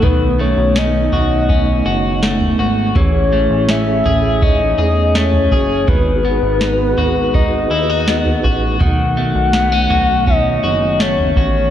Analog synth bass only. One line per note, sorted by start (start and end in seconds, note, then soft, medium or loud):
0.03 0.55 B1 medium
0.58 1.10 B1 loud
1.12 1.82 B1 medium
1.86 2.55 F#1 medium
2.59 2.94 G#1 medium
2.96 3.48 A1 medium
3.50 4.03 A1 loud
4.05 4.75 A1 medium
4.78 5.48 E2 medium
5.52 5.86 F#1 medium
5.88 6.40 G#1 medium
6.43 6.95 G#1 medium
6.98 7.67 G#1 medium
7.71 8.40 D#2 medium
8.44 8.79 A1 medium
8.81 9.33 B1 medium
9.35 9.88 B1 medium
9.90 10.60 B1 medium
10.64 11.33 F#1 medium
11.37 11.70 A1 medium